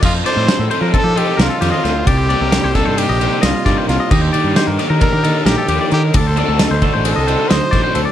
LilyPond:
<<
  \new Staff \with { instrumentName = "Clean electric guitar" } { \time 9/8 \key f \mixolydian \tempo 4. = 88 ees''16 c''16 d''8 c''16 a'16 c''16 bes'16 a'16 g'16 a'8 bes'16 a'16 g'16 ees''16 c''8 | d''16 c''16 d''16 bes'8 c''16 a'16 c''8 ees''16 c''8 ees''8 d''16 c''16 bes'16 ees''16 | ees''16 c''16 d''8 c''16 bes'16 d''16 bes'16 a'16 g'16 a'8 bes'16 a'16 g'16 d''16 bes'8 | d''16 c''16 d''16 a'8 c''16 a'16 c''8 ees''16 c''8 ees''8 d''16 c''16 a'16 d''16 | }
  \new Staff \with { instrumentName = "Trumpet" } { \time 9/8 \key f \mixolydian f'8 c''4 r8 a'8 g'8 f'4. | g'4. a'8 g'4 f'4 f'8 | g'4. r8 bes'4 g'4 g'8 | a'4. r8 a'4 c''4 r8 | }
  \new Staff \with { instrumentName = "Overdriven electric guitar" } { \time 9/8 \key f \mixolydian r8 <c' ees' a' c''>8 r8 <c' ees' a' c''>8 r8 <c' ees' a' c''>8 r8 <c' ees' a' c''>8 r8 | r8 <g c' ees' g'>8 r8 <g c' ees' g'>8 r8 <g c' ees' g'>8 r8 <g c' ees' g'>8 r8 | r8 <ees bes ees' g'>8 r8 <ees bes ees' g'>8 r8 <ees bes ees' g'>8 r8 <ees bes ees' g'>8 r8 | r8 <a d' fis' c''>8 r8 <a d' fis' c''>8 r8 <a d' fis' c''>8 r8 <a d' fis' c''>8 r8 | }
  \new Staff \with { instrumentName = "Clean electric guitar" } { \time 9/8 \key f \mixolydian << { r8 ees'8 a'8 a'8 ees'8 ees'2 | r8 bes8 d'8 d'8 bes8 d'4 bes4~ | bes8 d'8 ees'8 g'8 d'8 ees'2 | r8 bes16 c'16 ees'8 a'8 c'8 ees'4 bes16 c'8. | } \\ { f2. f8 ees8 d8 | c2. g4 c8 | ees2. g8 f8 ees8 | d2. fis4 d8 | } >> }
  \new Staff \with { instrumentName = "Fingered electric bass" } { \clef bass \time 9/8 \key f \mixolydian f,8 r16 a,16 r16 a,16 r16 f16 r16 f8 r16 c,16 r16 f,16 r16 d,8 | c,8. c,8 c,8 g,8 bes,,8 r16 c,16 r16 g,16 r16 c,16 r16 | ees,8 r16 g,16 r16 g,16 r16 ees16 r16 ees8 r16 bes,,16 r16 ees,16 r16 ees8 | d,8. d,8 d,8 a,,8 c,8 r16 d,16 r16 a,,16 r16 d,16 r16 | }
  \new DrumStaff \with { instrumentName = "Drums" } \drummode { \time 9/8 <cymc bd>8 <cymr sn>8 <cymr sn>8 cymr8 <bd cymr>8 cymr8 <cymr sn>8 <cymr sn>8 <cymr sn>8 | <bd cymr>8 cymr8 <cymr sn>8 <bd cymr sn>8 cymr8 cymr8 <cymr sn>8 <bd cymr sn>8 <cymr sn>8 | <cymc bd>8 cymr8 <cymr sn>8 <cymr sn>8 <bd cymr>8 cymr8 <cymr sn>8 cymr8 cymr8 | <bd cymr>8 cymr8 <cymr sn>8 <bd cymr>8 cymr8 cymr8 <cymr sn>8 <bd cymr sn>8 cymr8 | }
>>